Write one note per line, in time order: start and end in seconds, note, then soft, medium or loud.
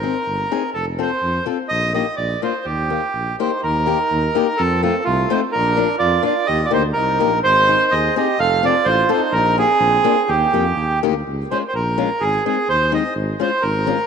0.00 0.14 C4 soft
0.00 0.14 D#4 soft
0.00 0.14 G#4 soft
0.00 0.70 A#4 medium
0.27 0.44 G1 medium
0.52 0.62 C4 medium
0.52 0.62 D#4 medium
0.52 0.62 G#4 medium
0.74 1.05 F1 medium
0.74 0.86 A4 medium
0.99 1.09 C4 soft
0.99 1.10 F4 soft
0.99 1.10 A4 soft
0.99 1.45 C5 medium
1.22 1.39 F2 medium
1.46 1.57 C4 soft
1.46 1.57 F4 medium
1.46 1.57 A4 medium
1.69 2.01 A#1 medium
1.69 1.93 D#5 loud
1.94 2.05 A#3 soft
1.94 2.05 D#4 soft
1.94 2.05 G4 medium
1.94 2.15 D#5 medium
2.17 2.34 A#1 medium
2.17 2.41 D5 medium
2.42 2.52 A#3 soft
2.42 2.53 D4 soft
2.42 2.53 F4 soft
2.42 2.66 C5 medium
2.65 2.97 D#2 medium
2.65 3.36 G4 medium
2.90 3.01 A#3 soft
2.90 3.01 D#4 soft
2.90 3.01 G4 soft
3.14 3.31 A#1 medium
3.40 3.50 A#3 medium
3.40 3.50 D#4 soft
3.40 3.60 D#4 medium
3.40 3.50 G4 medium
3.40 3.61 C5 soft
3.60 3.95 D#2 medium
3.60 4.53 D#4 medium
3.60 4.62 A#4 medium
3.86 3.97 A#3 soft
3.86 3.98 D#4 soft
3.86 3.98 G4 medium
4.11 4.28 D#2 medium
4.35 4.46 A#3 medium
4.35 4.46 D#4 medium
4.35 4.46 G4 medium
4.57 4.90 F2 medium
4.57 4.82 C4 medium
4.57 4.82 A4 medium
4.83 4.93 A3 soft
4.83 4.93 C4 medium
4.83 5.03 C4 medium
4.83 4.93 F4 medium
4.83 5.04 A4 medium
5.04 5.23 C2 loud
5.04 5.28 A3 medium
5.04 5.31 F4 medium
5.30 5.41 A3 medium
5.30 5.41 C4 medium
5.30 5.41 D#4 medium
5.30 5.41 F4 medium
5.30 5.40 C5 medium
5.52 5.85 A#1 medium
5.52 5.96 D4 medium
5.52 5.96 A#4 loud
5.77 5.87 A#3 medium
5.77 5.87 D4 soft
5.77 5.87 F4 soft
5.98 6.17 F2 medium
5.98 6.22 F4 loud
5.98 6.23 D5 medium
6.22 6.33 A#3 medium
6.22 6.33 D4 medium
6.22 6.34 F4 medium
6.22 6.45 F4 medium
6.22 6.47 D5 medium
6.46 6.64 D#2 medium
6.46 6.63 G4 medium
6.46 6.66 D#5 loud
6.64 6.71 F4 soft
6.64 6.72 D5 medium
6.71 6.81 A#3 medium
6.71 6.82 D#4 medium
6.71 6.81 G4 medium
6.71 6.83 C5 medium
6.75 6.94 D2 medium
6.93 7.19 C2 medium
6.93 7.41 D#4 medium
6.93 7.39 A#4 medium
7.20 7.42 A#1 medium
7.20 7.30 A#3 medium
7.20 7.30 D#4 soft
7.20 7.31 G4 medium
7.43 7.75 G#1 medium
7.43 7.88 D#4 medium
7.43 7.93 C5 loud
7.68 7.79 C4 soft
7.68 7.79 D#4 soft
7.68 7.79 G#4 soft
7.91 8.08 D#2 medium
7.91 8.15 G#4 medium
7.91 8.15 D#5 medium
8.16 8.26 C4 medium
8.16 8.26 D#4 medium
8.16 8.37 G4 medium
8.16 8.26 G#4 medium
8.16 8.40 D#5 medium
8.39 8.69 F1 medium
8.39 8.62 A4 medium
8.39 8.65 F5 loud
8.63 8.73 C4 medium
8.63 8.84 F4 medium
8.63 8.73 F4 soft
8.63 8.73 A4 soft
8.63 8.87 D5 loud
8.85 9.02 A1 loud
8.85 9.10 F4 medium
8.85 9.10 C5 loud
9.09 9.20 C4 medium
9.09 9.20 F4 medium
9.09 9.20 A4 medium
9.09 9.34 C5 medium
9.15 9.33 D#4 medium
9.32 9.63 A#1 loud
9.32 9.58 D#4 medium
9.32 9.56 A#4 medium
9.57 9.68 A#3 soft
9.57 9.68 D#4 soft
9.57 9.68 G4 medium
9.57 10.30 G#4 loud
9.64 10.27 C4 medium
9.80 9.97 A#1 loud
10.04 10.15 A#3 medium
10.04 10.15 D4 medium
10.04 10.15 F4 medium
10.28 10.45 D#2 medium
10.28 11.00 G4 medium
10.33 11.02 A#3 medium
10.53 10.74 F2 medium
10.53 10.64 A#3 soft
10.53 10.64 D#4 medium
10.53 10.64 G4 medium
10.76 11.00 D#2 medium
11.03 11.24 D2 medium
11.03 11.13 A#3 medium
11.03 11.13 D#4 medium
11.03 11.13 G4 medium
11.27 11.43 C#2 medium
11.51 11.61 G#3 medium
11.51 11.62 C#4 soft
11.51 11.62 F4 soft
11.51 11.58 C5 medium
11.68 11.74 C5 medium
11.74 12.05 A#1 medium
11.74 12.23 A#4 medium
11.98 12.08 G#3 medium
11.98 12.09 C#4 soft
11.98 12.08 F4 medium
12.21 12.37 G#1 medium
12.21 12.44 G#4 medium
12.46 12.56 G#3 soft
12.46 12.56 C4 soft
12.46 12.56 D#4 medium
12.46 12.68 G#4 medium
12.69 12.99 D#2 medium
12.69 12.92 C5 loud
12.92 13.02 G#3 medium
12.92 13.02 C4 medium
12.92 13.02 D#4 medium
12.92 13.14 D#5 medium
13.15 13.31 G#1 medium
13.40 13.50 G#3 soft
13.40 13.50 C#4 soft
13.40 13.50 F4 medium
13.40 13.63 C5 medium
13.62 13.93 G#1 medium
13.62 14.07 A#4 medium
13.87 13.97 G#3 medium
13.87 13.97 C#4 medium
13.87 13.97 F4 medium